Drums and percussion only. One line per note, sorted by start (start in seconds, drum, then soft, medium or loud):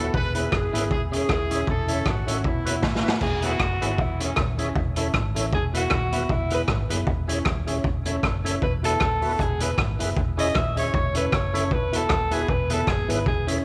0.14 kick loud
0.35 closed hi-hat medium
0.52 kick loud
0.52 cross-stick loud
0.75 closed hi-hat loud
0.91 kick loud
1.13 closed hi-hat medium
1.29 kick loud
1.29 cross-stick loud
1.51 closed hi-hat medium
1.67 kick loud
1.88 closed hi-hat medium
2.06 kick loud
2.06 cross-stick loud
2.28 closed hi-hat loud
2.44 kick loud
2.66 closed hi-hat loud
2.82 kick loud
2.82 snare medium
2.95 snare medium
3.08 snare loud
3.21 kick loud
3.21 crash medium
3.42 closed hi-hat medium
3.60 kick loud
3.60 cross-stick loud
3.82 closed hi-hat medium
3.98 kick loud
4.20 closed hi-hat medium
4.36 kick loud
4.36 cross-stick loud
4.58 closed hi-hat medium
4.76 kick loud
4.96 closed hi-hat medium
5.14 kick loud
5.14 cross-stick loud
5.36 closed hi-hat loud
5.53 kick loud
5.74 closed hi-hat loud
5.90 kick loud
5.90 cross-stick loud
6.12 closed hi-hat medium
6.29 kick loud
6.50 closed hi-hat medium
6.68 kick loud
6.68 cross-stick loud
6.90 closed hi-hat medium
7.07 kick loud
7.29 closed hi-hat loud
7.45 kick loud
7.45 cross-stick loud
7.67 closed hi-hat medium
7.84 kick loud
8.05 closed hi-hat medium
8.23 kick loud
8.23 cross-stick loud
8.46 closed hi-hat medium
8.62 kick loud
8.84 closed hi-hat loud
9.00 kick loud
9.00 cross-stick loud
9.22 open hi-hat medium
9.39 kick loud
9.39 hi-hat pedal medium
9.60 closed hi-hat medium
9.78 kick loud
9.78 cross-stick loud
10.00 closed hi-hat medium
10.17 kick loud
10.39 closed hi-hat medium
10.55 kick loud
10.55 cross-stick loud
10.77 closed hi-hat medium
10.94 kick loud
11.15 closed hi-hat medium
11.32 kick loud
11.32 cross-stick loud
11.55 closed hi-hat loud
11.71 kick loud
11.93 closed hi-hat medium
12.09 kick loud
12.09 cross-stick loud
12.31 closed hi-hat medium
12.48 kick loud
12.70 closed hi-hat medium
12.87 kick loud
12.87 cross-stick loud
13.10 closed hi-hat loud
13.26 kick loud
13.48 closed hi-hat loud